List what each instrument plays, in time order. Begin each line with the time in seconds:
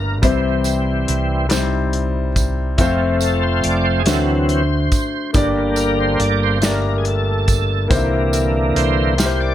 Already playing: fingered electric bass G1, grand piano A3 A#3 D4 G4 D5, tonewheel organ A#4
0.22 fingered electric bass C2, grand piano C3 G3 C4 E4 C5, tonewheel organ E3 G3 C4, kick, closed hi-hat, tambourine
0.64 closed hi-hat, tambourine
1.08 fingered electric bass C2, closed hi-hat
1.49 grand piano G3 C4 D#4 C5, snare, closed hi-hat, tambourine
1.57 grand piano E4
1.93 closed hi-hat
2.36 kick, closed hi-hat, tambourine
2.78 fingered electric bass F1, tonewheel organ F3 A3 C4, grand piano A3 C4 F4 C5, kick, closed hi-hat, tambourine
3.21 tonewheel organ A4, closed hi-hat, tambourine
3.43 tonewheel organ C5
3.64 fingered electric bass F1, tonewheel organ D5, closed hi-hat
3.84 tonewheel organ C5
4.00 tonewheel organ G#4
4.06 fingered electric bass D2, grand piano D3 A3 D4 F#4 C5, tonewheel organ E3 F#3 C4 A4, snare, closed hi-hat, tambourine
4.49 tonewheel organ C5, closed hi-hat
4.92 kick, closed hi-hat, tambourine
5.33 fingered electric bass G1, grand piano G2 A#3 D4 G4 D5, tonewheel organ D3 G3 A#3, kick, closed hi-hat, tambourine
5.76 tonewheel organ A#4, closed hi-hat, tambourine
6.00 tonewheel organ C5
6.20 fingered electric bass G1, tonewheel organ D5, closed hi-hat
6.43 tonewheel organ C5
6.61 grand piano A3 D4 G4 D5, tonewheel organ A#4, snare, closed hi-hat, tambourine
6.68 grand piano A#3
6.98 tonewheel organ G#4
7.05 tonewheel organ A4, closed hi-hat
7.48 kick, closed hi-hat, tambourine
7.88 fingered electric bass C2, grand piano C3 A#3 D#4 G4 C5, tonewheel organ D3 E3 A#3, kick, closed hi-hat, tambourine
7.96 grand piano E4
8.33 closed hi-hat, tambourine
8.76 fingered electric bass C2, tonewheel organ C5, closed hi-hat
9.16 grand piano A#3 E4 G4 A#4, closed hi-hat
9.20 snare, tambourine
9.26 grand piano C5
9.40 tonewheel organ D5